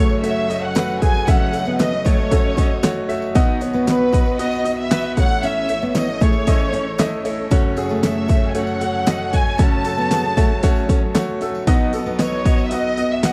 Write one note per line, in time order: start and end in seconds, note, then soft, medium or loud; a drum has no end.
0.00 1.23 F#1 medium
0.00 1.23 F#2 medium
0.00 3.31 F#3 medium
0.00 0.23 A3 loud
0.00 3.32 C#4 medium
0.00 0.23 F#4 loud
0.00 1.02 G#4 medium
0.00 3.31 A4 medium
0.00 0.76 B4 medium
0.00 0.20 C#5 medium
0.00 0.24 C#5 loud
0.00 1.25 C#5 medium
0.10 tambourine soft
0.23 0.44 A3 medium
0.23 0.44 F#4 medium
0.23 0.44 C#5 loud
0.23 0.63 E5 medium
0.23 open hi-hat medium
0.23 tambourine soft
0.49 0.70 A3 medium
0.49 0.70 F#4 medium
0.49 0.70 D#5 medium
0.49 open hi-hat medium
0.49 tambourine soft
0.64 1.02 F#5 medium
0.75 0.96 A3 loud
0.75 0.96 F#4 medium
0.75 0.96 B4 loud
0.75 snare loud
0.75 clap medium
0.75 open hi-hat loud
0.75 tambourine medium
1.02 1.22 A3 medium
1.02 1.22 F#4 medium
1.02 1.22 G#4 medium
1.02 1.26 G#5 loud
1.02 kick medium
1.02 open hi-hat medium
1.02 tambourine soft
1.14 tambourine soft
1.27 3.31 F#1 medium
1.27 3.31 F#2 medium
1.27 1.48 A3 medium
1.27 1.52 C#4 medium
1.27 1.48 F#4 medium
1.27 3.33 D#5 medium
1.27 1.48 E5 loud
1.27 1.80 F#5 medium
1.27 kick loud
1.27 open hi-hat medium
1.27 tambourine medium
1.53 1.74 A3 medium
1.53 1.74 F#4 medium
1.53 1.74 C#5 medium
1.53 open hi-hat medium
1.53 tambourine soft
1.65 1.91 B3 medium
1.65 tambourine soft
1.79 2.00 A3 medium
1.79 2.00 F#4 medium
1.79 2.00 B4 medium
1.79 2.04 D#5 loud
1.79 snare medium
1.79 clap medium
1.79 open hi-hat medium
1.79 tambourine medium
1.93 snare soft
2.05 2.26 A3 medium
2.05 2.18 A3 medium
2.05 2.26 F#4 medium
2.05 2.26 C#5 medium
2.05 3.10 C#5 medium
2.05 kick medium
2.05 open hi-hat medium
2.05 tambourine medium
2.17 tambourine soft
2.31 2.52 A3 medium
2.31 2.56 C#4 medium
2.31 2.52 F#4 medium
2.31 2.52 A4 medium
2.31 kick medium
2.31 open hi-hat loud
2.31 tambourine soft
2.57 2.78 A3 medium
2.57 2.70 C#4 medium
2.57 2.78 F#4 medium
2.57 2.78 D#5 medium
2.57 kick medium
2.57 open hi-hat medium
2.57 tambourine soft
2.83 3.04 A3 loud
2.83 3.04 F#4 loud
2.83 3.04 C#5 loud
2.83 snare loud
2.83 clap loud
2.83 open hi-hat loud
2.83 tambourine loud
3.08 3.29 A3 medium
3.08 3.29 F#4 medium
3.08 3.30 E5 loud
3.08 open hi-hat medium
3.08 tambourine soft
3.22 tambourine soft
3.35 5.13 B1 medium
3.35 5.13 B2 medium
3.35 5.15 D#3 medium
3.35 5.15 B3 medium
3.35 3.56 B3 loud
3.35 3.60 D#4 loud
3.35 5.15 F#4 medium
3.35 3.56 F#4 loud
3.35 5.15 B4 medium
3.35 3.56 D#5 loud
3.35 kick loud
3.35 open hi-hat medium
3.35 tambourine medium
3.61 3.82 B3 medium
3.61 3.82 F#4 medium
3.61 3.82 C#5 medium
3.61 open hi-hat medium
3.61 tambourine soft
3.73 4.11 B3 medium
3.73 tambourine soft
3.87 4.08 B3 medium
3.87 4.08 F#4 medium
3.87 4.36 B4 loud
3.87 4.07 D#5 medium
3.87 snare medium
3.87 clap medium
3.87 open hi-hat medium
3.87 tambourine medium
4.01 snare soft
4.12 4.33 B3 medium
4.12 4.33 F#4 medium
4.12 4.33 D#5 medium
4.12 kick medium
4.12 open hi-hat medium
4.12 tambourine medium
4.25 tambourine soft
4.39 4.60 B3 loud
4.39 4.60 F#4 medium
4.39 4.60 D#5 loud
4.39 4.78 D#5 loud
4.39 open hi-hat medium
4.39 tambourine soft
4.51 tambourine soft
4.65 4.85 B3 medium
4.65 4.85 F#4 medium
4.65 4.85 D#5 medium
4.65 open hi-hat medium
4.65 tambourine soft
4.79 5.15 E5 loud
4.91 5.11 B3 medium
4.91 5.11 F#4 medium
4.91 5.12 B4 loud
4.91 snare loud
4.91 clap medium
4.91 open hi-hat loud
4.91 tambourine medium
5.16 7.21 A1 medium
5.16 7.21 A2 medium
5.16 7.49 E3 medium
5.16 5.59 A3 medium
5.16 11.63 C#4 medium
5.16 5.59 E4 medium
5.16 11.63 A4 medium
5.16 11.63 C#5 medium
5.16 5.59 C#5 medium
5.16 5.42 F#5 loud
5.16 kick loud
5.16 open hi-hat medium
5.16 tambourine soft
5.43 5.68 C#4 loud
5.43 5.88 E5 loud
5.43 open hi-hat medium
5.43 tambourine medium
5.69 5.90 A3 medium
5.69 5.90 E4 medium
5.69 5.90 C#5 medium
5.69 open hi-hat medium
5.69 tambourine medium
5.82 6.07 B3 medium
5.82 tambourine soft
5.89 5.95 E5 medium
5.95 6.16 A3 medium
5.95 6.16 E4 medium
5.95 6.16 C#5 medium
5.95 6.22 D#5 loud
5.95 snare medium
5.95 clap medium
5.95 open hi-hat medium
5.95 tambourine medium
6.08 snare soft
6.20 6.42 A3 medium
6.20 6.34 A3 medium
6.20 6.42 E4 medium
6.20 6.42 G#4 medium
6.20 7.22 C#5 loud
6.20 kick loud
6.20 open hi-hat medium
6.20 tambourine soft
6.33 tambourine soft
6.47 6.68 A3 loud
6.47 6.72 C#4 medium
6.47 6.68 E4 medium
6.47 6.68 D#5 loud
6.47 kick medium
6.47 open hi-hat loud
6.47 tambourine medium
6.59 tambourine soft
6.73 6.94 A3 medium
6.73 6.85 C#4 medium
6.73 6.94 E4 medium
6.73 6.94 C#5 medium
6.73 open hi-hat medium
6.73 tambourine soft
6.98 7.20 A3 loud
6.98 7.20 E4 loud
6.98 7.20 D#5 loud
6.98 snare loud
6.98 clap medium
6.98 open hi-hat loud
6.98 tambourine medium
7.25 7.45 A3 medium
7.25 7.46 E4 medium
7.25 7.46 C#5 medium
7.25 open hi-hat medium
7.25 tambourine soft
7.50 9.55 F#1 medium
7.50 9.55 F#2 medium
7.50 13.33 F#3 medium
7.50 7.72 A3 loud
7.50 7.76 C#4 loud
7.50 7.72 F#4 loud
7.50 7.72 C#5 loud
7.50 kick loud
7.50 open hi-hat medium
7.50 tambourine medium
7.76 7.98 A3 medium
7.76 7.98 F#4 medium
7.76 7.98 G#4 loud
7.76 open hi-hat medium
7.76 tambourine soft
7.89 8.27 A3 medium
7.89 tambourine soft
8.03 8.24 A3 medium
8.03 8.24 F#4 medium
8.03 8.24 G#4 medium
8.03 8.46 E5 medium
8.03 snare loud
8.03 clap medium
8.03 open hi-hat medium
8.03 tambourine medium
8.16 snare soft
8.28 8.49 A3 medium
8.28 8.50 F#4 medium
8.28 8.50 C#5 medium
8.28 kick loud
8.28 open hi-hat medium
8.28 tambourine soft
8.49 8.56 G#5 medium
8.55 8.76 A3 medium
8.55 8.75 F#4 medium
8.55 8.76 C#5 loud
8.55 9.34 F#5 loud
8.55 open hi-hat loud
8.55 tambourine medium
8.67 tambourine soft
8.81 9.01 A3 medium
8.81 9.01 F#4 medium
8.81 9.02 C#5 medium
8.81 open hi-hat medium
8.81 tambourine soft
9.06 9.27 A3 medium
9.06 9.27 F#4 medium
9.06 9.27 D#5 loud
9.06 snare loud
9.06 clap medium
9.06 open hi-hat loud
9.06 tambourine medium
9.32 9.53 A3 medium
9.32 9.53 F#4 medium
9.32 9.53 C#5 medium
9.32 9.60 G#5 loud
9.32 kick medium
9.32 open hi-hat medium
9.32 tambourine soft
9.58 11.63 F#1 medium
9.58 11.63 F#2 medium
9.58 9.80 A3 medium
9.58 9.84 C#4 medium
9.58 9.80 F#4 medium
9.58 9.80 C#5 loud
9.58 11.16 A5 loud
9.58 kick loud
9.58 open hi-hat medium
9.58 tambourine medium
9.84 10.06 A3 medium
9.84 10.05 F#4 medium
9.84 10.06 A4 medium
9.84 open hi-hat medium
9.84 tambourine medium
9.97 10.23 B3 medium
9.97 tambourine soft
10.11 10.31 A3 medium
10.11 10.31 F#4 medium
10.11 10.31 G#4 medium
10.11 snare medium
10.11 clap medium
10.11 open hi-hat medium
10.11 tambourine medium
10.24 snare soft
10.37 10.58 A3 medium
10.37 10.49 A3 medium
10.37 10.58 F#4 medium
10.37 10.58 C#5 loud
10.37 kick loud
10.37 open hi-hat medium
10.37 tambourine medium
10.63 10.84 A3 loud
10.63 10.88 C#4 medium
10.63 10.84 F#4 loud
10.63 10.84 C#5 loud
10.63 kick medium
10.63 open hi-hat loud
10.63 tambourine soft
10.75 tambourine soft
10.89 11.10 A3 medium
10.89 11.02 C#4 medium
10.89 11.10 F#4 medium
10.89 11.10 C#5 loud
10.89 kick medium
10.89 open hi-hat medium
10.89 tambourine soft
11.14 11.35 A3 loud
11.14 11.35 F#4 loud
11.14 11.36 C#5 loud
11.14 snare loud
11.14 clap medium
11.14 open hi-hat loud
11.14 tambourine medium
11.41 11.62 A3 medium
11.41 11.62 F#4 medium
11.41 11.62 A4 loud
11.41 open hi-hat medium
11.41 tambourine soft
11.54 tambourine soft
11.67 13.33 B1 medium
11.67 13.33 B2 medium
11.67 11.88 B3 loud
11.67 11.92 D#4 loud
11.67 13.33 D#4 medium
11.67 11.88 F#4 loud
11.67 13.33 B4 medium
11.67 13.33 D#5 medium
11.67 11.88 D#5 loud
11.67 kick loud
11.67 open hi-hat medium
11.67 tambourine medium
11.93 12.14 B3 loud
11.93 12.14 F#4 medium
11.93 12.14 A4 medium
11.93 open hi-hat medium
11.93 tambourine medium
12.06 12.43 B3 medium
12.06 tambourine soft
12.19 12.40 B3 medium
12.19 12.40 F#4 medium
12.19 12.62 C#5 medium
12.19 12.40 D#5 medium
12.19 snare medium
12.19 clap medium
12.19 open hi-hat medium
12.19 tambourine medium
12.32 snare soft
12.45 12.66 B3 medium
12.45 12.66 F#4 medium
12.45 12.66 D#5 medium
12.45 kick loud
12.45 open hi-hat medium
12.45 tambourine medium
12.58 tambourine soft
12.66 12.72 E5 medium
12.71 12.92 B3 medium
12.71 12.92 F#4 medium
12.71 12.92 D#5 loud
12.71 13.11 D#5 loud
12.71 open hi-hat loud
12.71 tambourine soft
12.97 13.18 B3 medium
12.97 13.18 F#4 medium
12.97 13.18 D#5 medium
12.97 open hi-hat medium
12.97 tambourine soft
13.12 13.24 E5 medium
13.23 13.33 B3 loud
13.23 13.33 F#4 medium
13.23 13.33 D#5 loud
13.23 13.33 F#5 loud
13.23 snare loud
13.23 clap loud
13.23 open hi-hat loud
13.23 tambourine medium